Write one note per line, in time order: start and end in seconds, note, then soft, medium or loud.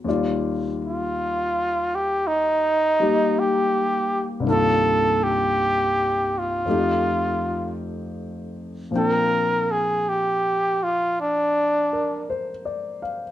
0.04 4.44 D#2 soft
0.04 4.43 D#3 soft
0.04 2.98 G3 soft
0.04 4.46 D5 soft
0.09 4.47 F4 soft
0.85 1.97 F4 medium
1.95 2.29 G4 medium
2.27 3.41 D#4 medium
3.00 4.45 G3 soft
3.00 4.45 A#3 soft
3.00 4.45 D#4 soft
3.00 4.46 G4 soft
3.39 4.30 G4 medium
4.40 6.64 C2 soft
4.40 6.65 G2 soft
4.45 6.66 D#3 soft
4.45 6.67 A#3 soft
4.49 6.68 D4 soft
4.49 6.70 F4 medium
4.49 5.25 A4 medium
5.23 6.40 G4 medium
6.38 7.82 F4 medium
6.65 8.91 F2 soft
6.65 8.90 F3 soft
6.65 8.92 A3 soft
6.65 8.92 D#4 soft
6.70 8.93 G4 soft
8.91 13.31 A#2 soft
8.91 13.31 F3 soft
8.91 13.31 C4 soft
8.91 13.31 D4 soft
8.96 9.73 A#4 medium
8.96 13.31 G5 soft
9.71 10.10 G#4 medium
10.09 10.85 G4 medium
10.83 11.18 F4 medium
11.21 12.26 D4 medium
11.93 12.50 A#4 soft
12.30 13.00 C5 soft
12.65 13.23 D5 soft
13.02 13.31 F5 soft